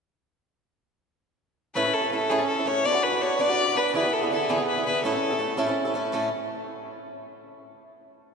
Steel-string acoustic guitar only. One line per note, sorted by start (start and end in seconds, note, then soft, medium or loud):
1.75 1.84 A2 medium
1.75 1.85 A3 medium
1.75 1.85 C#4 medium
1.75 1.84 E4 medium
1.75 1.83 A4 medium
1.84 2.03 C#4 soft
1.84 2.02 E4 soft
1.84 2.01 A4 soft
2.02 2.11 C#4 soft
2.02 2.12 E4 soft
2.02 2.11 A4 soft
2.11 2.29 A3 soft
2.11 2.30 C#4 soft
2.11 2.30 E4 soft
2.11 2.30 A4 soft
2.30 2.39 A2 medium
2.30 2.39 A3 medium
2.30 2.40 C#4 medium
2.30 2.39 E4 medium
2.30 2.37 A4 medium
2.38 2.58 C#4 soft
2.38 2.57 E4 soft
2.38 2.55 A4 medium
2.56 2.66 C#4 soft
2.56 2.66 E4 soft
2.56 2.66 A4 soft
2.66 2.84 A3 soft
2.66 2.85 C#4 medium
2.66 2.85 E4 medium
2.66 2.86 A4 medium
2.84 2.94 B3 medium
2.84 2.94 D4 medium
2.84 2.93 F#4 medium
2.84 2.91 B4 medium
2.93 3.13 D4 soft
2.93 3.12 F#4 soft
2.93 3.10 B4 soft
3.11 3.20 D4 soft
3.11 3.21 F#4 soft
3.11 3.21 B4 soft
3.20 3.38 B3 soft
3.20 3.38 D4 medium
3.20 3.39 F#4 medium
3.20 3.40 B4 medium
3.39 3.48 B3 medium
3.39 3.49 D4 medium
3.39 3.48 F#4 medium
3.39 3.46 B4 medium
3.48 3.67 D4 soft
3.48 3.66 F#4 soft
3.48 3.64 B4 soft
3.66 3.75 D4 soft
3.66 3.76 F#4 soft
3.66 3.75 B4 soft
3.75 3.94 B3 medium
3.75 3.94 D4 medium
3.75 3.95 F#4 medium
3.75 3.95 B4 medium
3.94 4.04 D3 medium
3.94 4.03 E3 medium
3.94 4.04 B3 medium
3.94 4.03 E4 medium
3.94 4.02 G#4 medium
4.03 4.23 B3 soft
4.03 4.22 E4 soft
4.03 4.20 G#4 soft
4.21 4.30 B3 soft
4.21 4.31 E4 soft
4.21 4.31 G#4 soft
4.30 4.48 D3 soft
4.30 4.48 B3 medium
4.30 4.49 E4 medium
4.30 4.49 G#4 medium
4.49 4.58 D3 medium
4.49 4.58 E3 medium
4.49 4.59 B3 medium
4.49 4.58 E4 medium
4.49 4.57 G#4 medium
4.58 4.78 B3 soft
4.58 4.77 E4 soft
4.58 4.75 G#4 medium
4.76 4.86 B3 soft
4.76 4.86 E4 soft
4.76 4.85 G#4 soft
4.86 5.04 D3 soft
4.86 5.05 B3 medium
4.86 5.04 E4 medium
4.86 5.05 G#4 medium
5.04 5.13 A2 medium
5.04 5.13 A3 medium
5.04 5.14 C#4 medium
5.04 5.13 E4 medium
5.04 5.11 A4 medium
5.13 5.32 C#4 soft
5.13 5.31 E4 soft
5.13 5.29 A4 medium
5.30 5.39 C#4 soft
5.30 5.40 E4 soft
5.30 5.40 A4 medium
5.39 5.57 A3 medium
5.39 5.57 C#4 soft
5.39 5.57 E4 soft
5.39 5.58 A4 medium
5.57 5.67 A2 medium
5.57 5.67 A3 medium
5.57 5.68 C#4 medium
5.57 5.67 E4 medium
5.57 5.65 A4 medium
5.66 5.86 C#4 soft
5.66 5.85 E4 soft
5.66 5.84 A4 medium
5.85 5.94 C#4 soft
5.85 5.94 E4 soft
5.85 5.95 A4 medium
5.94 6.12 A3 medium
5.94 6.12 C#4 medium
5.94 6.13 E4 medium
5.94 6.14 A4 medium
6.12 6.27 A2 medium
6.12 6.28 A3 medium
6.12 6.28 C#4 medium
6.12 6.28 E4 medium
6.12 6.29 A4 medium